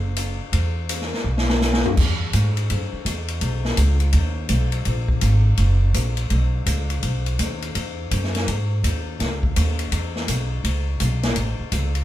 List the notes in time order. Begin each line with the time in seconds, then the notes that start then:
Already playing: F#1
0.17 hi-hat pedal, ride
0.53 E2, ride
0.89 hi-hat pedal, ride
1.01 snare
1.14 snare
1.24 B1
1.38 snare
1.50 snare
1.61 snare, hi-hat pedal
1.73 snare
1.85 floor tom
1.97 E2, kick, crash
2.33 G#2, hi-hat pedal, ride
2.57 ride
2.70 F#2, ride
2.93 muted upright bass stroke
3.05 E2, hi-hat pedal, ride
3.28 ride
3.41 B1, ride
3.65 snare
3.77 C#2, hi-hat pedal, ride
4.00 ride
4.13 D#2, ride
4.49 B1, hi-hat pedal, ride
4.72 ride
4.85 A#1, ride
5.08 kick
5.21 G#1, hi-hat pedal, ride
5.57 F#1, ride
5.94 A#1, hi-hat pedal, ride
6.17 ride
6.30 B1, ride
6.66 C#2, hi-hat pedal, ride
6.90 ride
7.03 B1, ride
7.26 ride
7.39 D#2, hi-hat pedal, ride
7.62 ride
7.75 E2, ride
8.11 F#2, hi-hat pedal, ride
8.24 snare
8.35 snare, ride
8.47 G#2, ride
8.83 D#2, hi-hat pedal, ride
9.20 C#2, snare, ride
9.43 kick
9.56 D#2, hi-hat pedal, ride
9.79 ride
9.92 E2, ride
10.16 snare
10.28 B1, hi-hat pedal, ride
10.64 C#2, ride
11.00 B1, hi-hat pedal, ride
11.23 snare, ride
11.36 A1, ride
11.59 muted upright bass stroke
11.72 C#2, hi-hat pedal, ride
11.95 ride